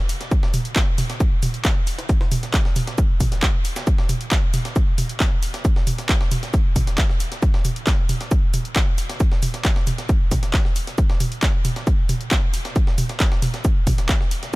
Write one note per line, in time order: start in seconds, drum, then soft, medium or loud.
0.09 open hi-hat loud
0.09 shaker medium
0.21 snare soft
0.21 closed hi-hat medium
0.31 kick loud
0.31 closed hi-hat medium
0.31 shaker medium
0.43 snare medium
0.54 mid tom loud
0.54 open hi-hat loud
0.54 shaker medium
0.65 closed hi-hat medium
0.76 kick loud
0.76 snare loud
0.76 clap loud
0.76 closed hi-hat medium
0.76 shaker medium
0.98 mid tom loud
0.98 open hi-hat loud
0.98 shaker medium
1.10 snare soft
1.10 closed hi-hat medium
1.20 kick loud
1.20 closed hi-hat medium
1.20 shaker medium
1.43 mid tom loud
1.43 open hi-hat loud
1.43 shaker medium
1.54 closed hi-hat medium
1.65 kick loud
1.65 snare loud
1.65 clap loud
1.65 closed hi-hat medium
1.65 shaker medium
1.87 open hi-hat loud
1.87 shaker medium
1.98 snare medium
1.98 closed hi-hat medium
2.09 kick loud
2.09 closed hi-hat medium
2.09 shaker medium
2.21 snare medium
2.32 mid tom loud
2.32 open hi-hat loud
2.32 shaker medium
2.43 snare soft
2.43 closed hi-hat medium
2.54 kick loud
2.54 snare loud
2.54 clap loud
2.54 closed hi-hat medium
2.54 shaker medium
2.65 snare medium
2.76 mid tom loud
2.76 open hi-hat loud
2.76 shaker medium
2.87 snare medium
2.87 closed hi-hat medium
2.98 kick loud
2.98 closed hi-hat medium
2.98 shaker medium
3.20 kick medium
3.20 mid tom loud
3.20 open hi-hat loud
3.20 shaker medium
3.32 snare soft
3.32 closed hi-hat medium
3.43 kick loud
3.43 snare loud
3.43 clap loud
3.43 closed hi-hat medium
3.43 shaker medium
3.65 open hi-hat loud
3.65 shaker medium
3.76 snare loud
3.76 closed hi-hat medium
3.76 shaker medium
3.87 kick loud
3.87 closed hi-hat medium
3.87 shaker medium
3.98 snare medium
4.09 mid tom medium
4.09 open hi-hat loud
4.09 shaker medium
4.21 closed hi-hat medium
4.31 kick loud
4.31 snare loud
4.31 clap loud
4.31 closed hi-hat medium
4.31 shaker medium
4.54 mid tom medium
4.54 open hi-hat loud
4.54 shaker medium
4.65 snare soft
4.65 closed hi-hat medium
4.76 kick loud
4.76 closed hi-hat medium
4.76 shaker medium
4.98 mid tom medium
4.98 open hi-hat loud
4.98 shaker medium
5.09 closed hi-hat medium
5.20 kick loud
5.20 snare loud
5.20 clap loud
5.20 closed hi-hat medium
5.20 shaker medium
5.43 open hi-hat loud
5.43 shaker medium
5.54 snare medium
5.54 closed hi-hat medium
5.65 kick loud
5.65 closed hi-hat medium
5.65 shaker medium
5.76 snare medium
5.87 mid tom medium
5.87 open hi-hat loud
5.87 shaker medium
5.98 snare soft
5.98 closed hi-hat medium
6.09 kick loud
6.09 snare loud
6.09 clap loud
6.09 closed hi-hat medium
6.09 shaker medium
6.21 snare medium
6.31 mid tom medium
6.31 open hi-hat loud
6.31 shaker medium
6.43 snare medium
6.43 closed hi-hat medium
6.54 kick loud
6.54 closed hi-hat medium
6.54 shaker medium
6.76 kick medium
6.76 mid tom medium
6.76 open hi-hat loud
6.76 shaker medium
6.87 snare soft
6.87 closed hi-hat medium
6.98 kick loud
6.98 snare loud
6.98 clap loud
6.98 closed hi-hat medium
6.98 shaker medium
7.10 snare soft
7.20 open hi-hat loud
7.20 shaker medium
7.32 snare soft
7.32 closed hi-hat medium
7.43 kick loud
7.43 closed hi-hat medium
7.43 shaker medium
7.54 snare medium
7.65 mid tom medium
7.65 open hi-hat loud
7.65 shaker medium
7.76 closed hi-hat medium
7.87 kick loud
7.87 snare loud
7.87 clap loud
7.87 closed hi-hat medium
7.87 shaker medium
8.09 mid tom medium
8.09 open hi-hat loud
8.09 shaker medium
8.21 snare soft
8.21 closed hi-hat medium
8.31 kick loud
8.31 closed hi-hat medium
8.31 shaker medium
8.54 mid tom medium
8.54 open hi-hat loud
8.54 shaker medium
8.65 closed hi-hat medium
8.76 kick loud
8.76 snare loud
8.76 clap loud
8.76 closed hi-hat medium
8.76 shaker medium
8.98 open hi-hat loud
8.98 shaker medium
9.09 snare medium
9.09 closed hi-hat medium
9.20 kick loud
9.20 closed hi-hat medium
9.20 shaker medium
9.32 snare medium
9.42 mid tom medium
9.42 open hi-hat loud
9.42 shaker medium
9.54 snare soft
9.54 closed hi-hat medium
9.65 kick loud
9.65 snare loud
9.65 clap loud
9.65 closed hi-hat medium
9.65 shaker medium
9.76 snare medium
9.87 mid tom medium
9.87 open hi-hat loud
9.87 shaker medium
9.98 snare medium
9.98 closed hi-hat medium
10.09 kick loud
10.09 closed hi-hat medium
10.09 shaker medium
10.31 kick medium
10.31 mid tom medium
10.31 open hi-hat loud
10.31 shaker medium
10.43 snare soft
10.43 closed hi-hat medium
10.54 kick loud
10.54 snare loud
10.54 clap loud
10.54 closed hi-hat medium
10.54 shaker medium
10.65 snare soft
10.76 open hi-hat loud
10.76 shaker medium
10.87 snare soft
10.87 closed hi-hat medium
10.98 kick loud
10.98 closed hi-hat medium
10.98 shaker medium
11.10 snare medium
11.20 mid tom medium
11.20 open hi-hat loud
11.20 shaker medium
11.32 closed hi-hat medium
11.43 kick loud
11.43 snare loud
11.43 clap loud
11.43 closed hi-hat medium
11.43 shaker medium
11.65 mid tom loud
11.65 open hi-hat loud
11.65 shaker medium
11.76 snare medium
11.76 closed hi-hat medium
11.87 kick loud
11.87 closed hi-hat medium
11.87 shaker medium
12.09 mid tom loud
12.09 open hi-hat loud
12.09 shaker medium
12.21 closed hi-hat medium
12.31 kick loud
12.31 snare loud
12.31 clap loud
12.31 closed hi-hat medium
12.31 shaker medium
12.54 open hi-hat loud
12.54 shaker medium
12.65 snare medium
12.65 closed hi-hat medium
12.76 kick loud
12.76 closed hi-hat medium
12.76 shaker medium
12.87 snare medium
12.98 mid tom loud
12.98 open hi-hat loud
12.98 shaker medium
13.09 snare soft
13.09 closed hi-hat medium
13.20 kick loud
13.20 snare loud
13.20 clap loud
13.20 closed hi-hat medium
13.20 shaker medium
13.32 snare medium
13.42 mid tom loud
13.42 open hi-hat loud
13.42 shaker medium
13.54 snare medium
13.54 closed hi-hat medium
13.65 kick loud
13.65 closed hi-hat medium
13.65 shaker medium
13.87 kick medium
13.87 mid tom medium
13.87 open hi-hat loud
13.87 shaker medium
13.98 snare soft
13.98 closed hi-hat medium
14.09 kick loud
14.09 snare loud
14.09 clap loud
14.09 closed hi-hat medium
14.09 shaker medium
14.21 snare soft
14.31 open hi-hat loud
14.31 shaker medium
14.43 snare soft
14.43 closed hi-hat medium